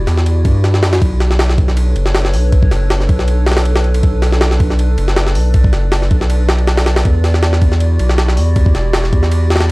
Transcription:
0.00 0.98 E4 medium
0.00 0.98 F#4 medium
0.00 0.98 G4 medium
0.00 0.98 D5 medium
0.07 0.47 E2 medium
0.07 snare soft
0.07 ride medium
0.18 snare soft
0.26 ride medium
0.45 0.84 G2 loud
0.45 kick medium
0.45 ride medium
0.64 snare soft
0.64 ride medium
0.74 snare medium
0.83 1.00 F#2 medium
0.83 snare loud
0.83 ride medium
0.93 snare loud
0.93 ride medium
1.02 1.95 B1 loud
1.02 7.02 D4 medium
1.02 7.01 A4 medium
1.02 7.02 B4 medium
1.02 4.01 C#5 medium
1.02 kick loud
1.02 ride medium
1.20 snare medium
1.20 ride medium
1.31 snare medium
1.39 snare loud
1.39 ride medium
1.49 snare medium
1.58 kick medium
1.58 ride medium
1.68 snare soft
1.77 ride medium
1.96 2.35 F#1 loud
1.96 ride medium
2.06 snare medium
2.15 snare loud
2.15 ride medium
2.25 snare medium
2.34 2.70 B1 loud
2.34 open hi-hat medium
2.52 kick loud
2.52 ride medium
2.62 kick medium
2.71 3.08 F#1 loud
2.71 snare soft
2.71 ride medium
2.90 snare loud
2.90 ride medium
3.00 snare soft
3.09 4.02 B1 medium
3.09 kick loud
3.09 ride medium
3.19 snare soft
3.28 ride medium
3.46 snare medium
3.46 ride medium
3.52 snare medium
3.52 ride medium
3.57 snare loud
3.57 ride medium
3.65 ride medium
3.76 snare loud
3.76 ride medium
3.84 ride soft
3.94 ride medium
4.03 4.96 B1 loud
4.03 9.72 D5 medium
4.03 kick loud
4.03 ride medium
4.22 snare medium
4.22 ride medium
4.32 snare medium
4.41 snare loud
4.41 ride medium
4.51 snare medium
4.60 kick loud
4.60 ride medium
4.70 snare soft
4.79 ride loud
4.98 5.37 F#1 loud
4.98 ride medium
5.08 snare medium
5.16 snare loud
5.16 ride medium
5.27 snare medium
5.35 5.72 B1 loud
5.35 open hi-hat medium
5.54 kick loud
5.54 ride medium
5.64 kick medium
5.73 6.10 F#1 loud
5.73 snare soft
5.73 ride medium
5.92 snare loud
5.92 ride medium
6.02 snare soft
6.11 7.04 B1 medium
6.11 kick medium
6.11 ride medium
6.21 snare soft
6.30 ride medium
6.49 snare loud
6.49 ride medium
6.58 ride soft
6.67 snare loud
6.67 ride medium
6.77 snare loud
6.77 ride medium
6.86 snare loud
6.86 ride medium
6.96 snare loud
6.96 ride medium
7.05 7.98 E2 loud
7.05 9.72 E4 medium
7.05 9.72 F#4 medium
7.05 9.72 G4 medium
7.05 kick loud
7.05 ride medium
7.24 snare medium
7.24 ride medium
7.34 snare medium
7.43 snare loud
7.43 ride medium
7.53 snare medium
7.62 kick medium
7.62 ride medium
7.72 snare soft
7.80 ride medium
7.99 8.39 B1 loud
7.99 ride medium
8.09 snare medium
8.18 snare loud
8.18 ride medium
8.28 snare medium
8.37 8.74 E2 loud
8.37 open hi-hat medium
8.56 kick loud
8.56 ride medium
8.66 kick medium
8.75 9.11 E1 medium
8.75 snare soft
8.75 ride medium
8.93 snare loud
8.93 ride medium
9.04 snare soft
9.13 9.72 E2 medium
9.13 kick medium
9.13 ride medium
9.23 snare soft
9.32 ride medium
9.50 snare medium
9.50 ride medium
9.56 snare medium
9.56 ride medium
9.60 snare loud
9.60 ride medium

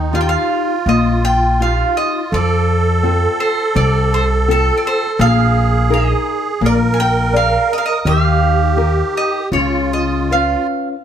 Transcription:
0.00 0.35 D#2 medium
0.00 0.11 D#3 medium
0.00 0.15 D#4 medium
0.00 0.11 G5 loud
0.12 0.72 D#4 medium
0.12 2.38 F4 medium
0.12 0.72 F4 soft
0.12 0.72 G4 medium
0.12 0.20 F5 medium
0.21 0.27 G5 medium
0.29 0.89 F5 medium
0.86 1.81 A#1 medium
0.86 1.58 A#3 medium
0.86 1.25 D#5 medium
1.25 1.62 G5 loud
1.60 2.18 D#4 soft
1.60 2.18 F4 soft
1.60 2.18 G4 medium
1.60 1.95 F5 medium
1.97 2.30 D#5 medium
2.32 3.25 F2 medium
2.32 3.02 F3 medium
2.32 5.27 A4 loud
2.32 3.40 D5 medium
3.03 3.61 C4 medium
3.03 3.61 F4 soft
3.03 3.61 A4 medium
3.40 3.76 C5 medium
3.75 4.69 C2 loud
3.75 4.46 C3 medium
3.75 4.14 D5 medium
4.14 4.23 C5 medium
4.48 5.05 C4 medium
4.48 5.05 F4 soft
4.48 5.05 A4 medium
4.48 4.77 A4 medium
4.77 4.84 D5 medium
4.87 5.22 C5 medium
5.19 6.12 A#1 loud
5.19 5.88 A#3 medium
5.19 6.66 G#4 loud
5.19 5.94 F5 loud
5.90 6.47 D#4 medium
5.90 6.47 G#4 soft
5.90 6.47 A#4 medium
5.90 6.65 D#5 medium
6.61 7.55 A#1 medium
6.61 7.31 A#3 medium
6.61 8.11 A#4 loud
6.66 6.73 D5 loud
6.94 6.99 G#5 medium
7.00 7.36 G5 loud
7.33 7.91 G#4 soft
7.33 7.91 A#4 soft
7.33 7.91 D5 medium
7.33 7.69 F5 medium
7.73 7.75 D#5 medium
7.78 7.84 F5 medium
7.86 8.05 D#5 medium
8.05 9.01 D#2 medium
8.05 8.76 D#3 medium
8.05 9.49 G4 loud
8.05 9.19 F5 loud
8.76 9.37 D#4 medium
8.76 9.37 G4 soft
8.76 9.37 A#4 medium
9.17 9.51 D#5 medium
9.52 10.54 C#2 medium
9.52 10.29 C#3 medium
9.52 10.67 F4 medium
9.52 9.89 C#5 medium
9.93 10.33 D#5 medium
10.30 10.93 C#4 soft
10.30 10.94 F4 soft
10.30 10.94 B4 soft
10.30 10.87 F5 medium

